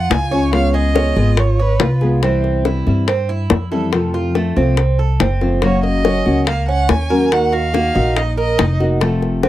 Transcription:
Already playing: F4 F#5
0.10 C#2 G#5, high bongo, low bongo
0.31 G#3 C#4 F4 C#5, high bongo
0.52 C#3 G#3 B3 F4 G#4 F5, high bongo
0.74 G#4 D#5, high bongo
0.95 G#3 B3 C#4 F4 G#4, high bongo
1.16 G#1 G#3 B3 F4 G#4, high bongo
1.37 C#5, muted nylon-string guitar stroke, high bongo
1.59 B4 C#5
1.80 C2 F4, high bongo, low bongo
2.01 G#3 B3 F4 G#4, high bongo
2.23 C3 E3 G3 C4 E4, high bongo
2.44 high bongo
2.65 E3 G3 C4 E4, high bongo
2.87 G2 E3 G3 C4 E4, high bongo
3.08 C4, muted nylon-string guitar stroke, high bongo
3.29 E4
3.50 F2, high bongo, low bongo
3.71 E3 G3 C4 E4 A4, high bongo
3.93 C3 F3 A3 C4 F4, high bongo
4.14 F4, high bongo
4.35 F3 A3 C4 F4, high bongo
4.56 C2 F3 A3 C4 F4, high bongo
4.77 muted nylon-string guitar stroke, high bongo
4.99 A4
5.20 F#1 C4, high bongo, low bongo
5.41 F3 A3 C4 F4, high bongo
5.62 C#3 F#3 A#3 C#4 F#4 C#5, high bongo
5.83 D#5, high bongo
6.05 F#3 A#3 C#4 F#4, high bongo
6.26 C#2 F#3 A#3 C#4 F#4, high bongo
6.47 A#3 F5, muted nylon-string guitar stroke, high bongo
6.68 C#4 F#5
6.89 D#2 G#5, high bongo, low bongo
7.10 F#3 A#3 C#4 F#4 A#4, high bongo
7.32 D#3 A#3 D#4 F#4 F#5, high bongo
7.52 F#4 F5, high bongo
7.74 D#3 A#3 D#4 F#4, high bongo
7.95 A#1 A#3 D#4 F#4, high bongo
8.17 D#5, muted nylon-string guitar stroke, high bongo
8.37 A#4 D#5
8.58 F1 D#4, high bongo, low bongo
8.80 A#3 D#4 F#4, high bongo
9.01 C3 F3 A3 C4 F4, high bongo
9.22 high bongo
9.43 F3 A3 C4 F4, high bongo

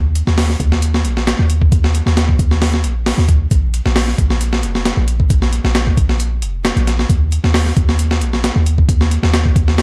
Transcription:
Already playing: D#2
0.15 closed hi-hat
0.27 D#2, snare
0.38 snare, open hi-hat
0.50 snare
0.60 D#2, kick, closed hi-hat
0.72 snare
0.82 closed hi-hat
0.94 snare
1.05 A#1, closed hi-hat
1.17 snare
1.27 snare, closed hi-hat
1.39 D#2
1.50 closed hi-hat
1.62 kick
1.72 D#2, kick, closed hi-hat
1.84 snare
1.95 closed hi-hat
2.06 D#2, snare
2.17 snare, closed hi-hat
2.29 kick
2.39 D#2, kick, closed hi-hat
2.51 snare
2.62 snare, open hi-hat
2.74 snare
2.84 A#1, closed hi-hat
3.06 snare, open hi-hat
3.18 D#2, snare
3.29 kick, closed hi-hat
3.51 A#1, kick, closed hi-hat
3.74 closed hi-hat
3.86 A#1, snare
3.96 snare, open hi-hat
4.08 snare
4.18 A#1, kick, closed hi-hat
4.30 snare
4.41 closed hi-hat
4.53 snare
4.63 F1, closed hi-hat
4.75 snare
4.85 snare, closed hi-hat
4.97 A#1
5.08 closed hi-hat
5.20 kick
5.30 A#1, kick, closed hi-hat
5.42 snare
5.53 closed hi-hat
5.64 A#1, snare
5.75 snare, closed hi-hat
5.87 kick
5.97 A#1, kick, closed hi-hat
6.09 snare
6.20 closed hi-hat
6.42 F1, closed hi-hat
6.65 snare, closed hi-hat
6.76 A#1, closed hi-hat
6.87 snare, closed hi-hat
6.99 snare
7.09 D#2, kick, closed hi-hat
7.32 closed hi-hat
7.44 D#2, snare
7.54 snare, open hi-hat
7.66 snare
7.77 D#2, kick, closed hi-hat
7.89 snare
7.99 closed hi-hat
8.11 snare
8.21 A#1, closed hi-hat
8.33 snare
8.44 snare, closed hi-hat
8.56 D#2
8.66 closed hi-hat
8.78 kick
8.89 D#2, kick, closed hi-hat
9.01 snare
9.11 closed hi-hat
9.23 D#2, snare
9.34 snare, closed hi-hat
9.45 kick
9.56 D#2, kick, closed hi-hat
9.68 snare
9.78 snare, open hi-hat

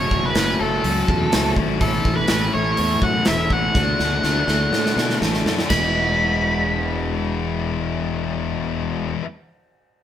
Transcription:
Already playing: F#2 F#3 A3 C#4 F#4 C#5
0.11 F#1, kick
0.26 B4
0.35 F#1 F#3 A3 C#4 F#4, snare, open hi-hat
0.60 F#1 F#3 A3 C#4 F#4 A4
0.83 C#2 F#3 A3 C#4 F#4, open hi-hat
1.08 E2 C#4, kick
1.31 C#2 F#3 A3 C#4 F#4, snare, open hi-hat
1.56 G#1 F#3 A3 C#4 F#4, kick
1.80 A1 A2 E3 A3 C#4 E4 A4, kick, open hi-hat
2.05 A1, kick
2.16 B4
2.28 A1 A2 E3 A3 C#4 E4, snare, open hi-hat
2.53 A1 A2 E3 A3 C#4 E4 C#5
2.77 E2 A2 E3 A3 C#4 E4, open hi-hat
3.02 F#2 C#4 F#5, kick
3.25 E1 A2 E3 A3 C#4 E4 E5, snare, open hi-hat
3.50 A1 A2 E3 A3 C#4 E4 F#5, kick
3.75 D2 D3 A3 D4 F#4, kick, snare
3.99 D2, snare
4.23 D2 D3 A3 D4 F#4, snare
4.48 D2 D3 A3 D4 F#4, snare
4.71 A2 D3 A3 D4 F#4, snare
4.86 snare
4.96 B2 D4, snare
5.10 snare
5.22 A1 D3 A3 D4 F#4, snare
5.33 snare
5.45 F#2 D3 A3, snare
5.50 D4 F#4
5.59 snare
5.69 E1 E2 B2 E3 G#3 B5, kick, snare, crash
5.74 B3 E4

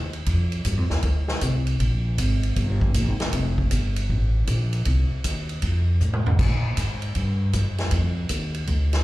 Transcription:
Already playing: D#2
0.13 ride
0.26 F2, kick, ride
0.52 ride
0.65 G2, kick, hi-hat pedal, ride
0.77 F2
0.90 D#2, snare
1.02 D2, kick, ride
1.28 snare
1.41 C2, kick, hi-hat pedal, ride
1.67 ride
1.80 A#1, kick, ride
2.18 G#1, kick, hi-hat pedal, ride
2.43 ride
2.56 G1, kick, ride
2.81 kick
2.94 A#1, kick, hi-hat pedal, ride
3.08 G#1
3.20 snare, ride
3.33 F1, kick, ride
3.58 kick
3.71 G1, kick, hi-hat pedal, ride
3.96 ride
4.09 A1, kick
4.47 A#1, kick, hi-hat pedal, ride
4.73 ride
4.85 C2, kick, ride
5.10 muted upright bass stroke
5.24 D#2, kick, hi-hat pedal, ride
5.49 ride
5.62 F2, kick, ride
6.00 A2, hi-hat pedal
6.13 mid tom
6.26 floor tom
6.39 A#2, kick, crash
6.77 G#2, kick, hi-hat pedal, ride
7.02 ride
7.15 G2, kick, ride
7.53 F#2, kick, hi-hat pedal, ride
7.78 snare, ride
7.91 F2, kick, ride
8.29 D#2, kick, hi-hat pedal, ride
8.54 ride
8.67 D2, kick, ride
8.93 snare, ride

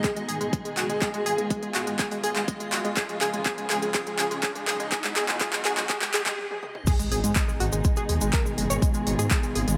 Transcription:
Already playing: B2 D#3 G#3 D#4 G#4 D#5, riser
0.04 G#4, kick, clap, closed hi-hat
0.16 G#3, closed hi-hat
0.28 G#1 G#4, open hi-hat
0.41 G#1 G#3, closed hi-hat
0.53 G#3, kick, closed hi-hat
0.65 G#3, closed hi-hat
0.77 F#1 F#4, clap, open hi-hat
0.89 G#1 G#3, closed hi-hat
1.02 F4 G#4, kick, clap, closed hi-hat
1.14 G#3, closed hi-hat
1.26 G#1 G#4, open hi-hat
1.38 G#2 G#3, closed hi-hat
1.50 G#3, kick, closed hi-hat
1.63 G#3, closed hi-hat
1.75 G#1 F#4, clap, open hi-hat
1.87 G#1 G#3, closed hi-hat
1.99 G#4, kick, clap, closed hi-hat
2.11 G#3, open hi-hat
2.24 G#1 G#4, open hi-hat
2.36 G#1 G#3, clap, closed hi-hat
2.48 G#3, kick, closed hi-hat
2.60 G#3, closed hi-hat
2.72 F#1 F#4, clap, open hi-hat
2.85 G#1 G#3, closed hi-hat
2.97 C#3 F3 G#3 G#4, kick, clap, closed hi-hat
3.09 G#3, closed hi-hat
3.21 C#2 G#4, clap, open hi-hat
3.33 G#1 G#3, closed hi-hat
3.46 G#4, kick, clap, closed hi-hat
3.58 G#3, closed hi-hat
3.70 C#2 G#4, clap, open hi-hat
3.82 C#2 G#3, closed hi-hat
3.94 G#4, kick, clap, closed hi-hat
4.07 G#3, closed hi-hat
4.19 C#2 G#4, clap, open hi-hat
4.31 C#2 G#3, closed hi-hat
4.43 G#4, kick, clap, closed hi-hat
4.55 G#3, closed hi-hat
4.67 B1 G#4, clap, open hi-hat
4.80 C#2 G#3, closed hi-hat
4.92 B2 D#3 F#3 D#4 F#4 G#4, kick, clap, closed hi-hat
5.04 G#3, clap, closed hi-hat
5.16 B1 G#4, clap, open hi-hat
5.29 F#1 G#3, clap, closed hi-hat
5.41 G#4, kick, clap, closed hi-hat
5.53 G#3, clap, closed hi-hat
5.65 B1 G#4, clap, open hi-hat
5.77 B1 G#3, clap, closed hi-hat
5.89 G#4, kick, clap, closed hi-hat
6.02 G#3, clap, open hi-hat
6.14 F#1 G#4, clap, open hi-hat
6.26 B1 G#3, kick, clap, closed hi-hat
6.38 high tom
6.51 high tom
6.63 mid tom
6.75 mid tom
6.87 B2 D#3 G#3 D#4 G#4, kick, closed hi-hat, crash, impact, shaker
6.99 G#3, closed hi-hat, shaker
7.12 G#1 G#4, open hi-hat
7.24 G#2 G#3, closed hi-hat, shaker
7.36 G#3, kick, clap, closed hi-hat, shaker
7.48 G#3, shaker
7.60 G#1 F#4, open hi-hat
7.72 G#1 G#3, closed hi-hat, shaker
7.84 G#3, kick, closed hi-hat, shaker
7.96 G#4, closed hi-hat, shaker
8.09 D#2 G#3, open hi-hat
8.21 G#1 G#3, closed hi-hat, shaker
8.33 A#4, kick, clap, closed hi-hat, shaker
8.46 G#3, shaker
8.58 F#1 G#3, open hi-hat
8.70 G#1 C#5, closed hi-hat, shaker
8.82 G#3 F4, kick, closed hi-hat, shaker
8.94 G#3, closed hi-hat, shaker
9.07 G#1 G#3, open hi-hat
9.19 G#2 G#4, closed hi-hat, shaker
9.31 G#3, kick, clap, closed hi-hat, shaker
9.43 G#3, closed hi-hat, shaker
9.55 G#1 G#4, open hi-hat
9.68 G#1 G#3, closed hi-hat, shaker

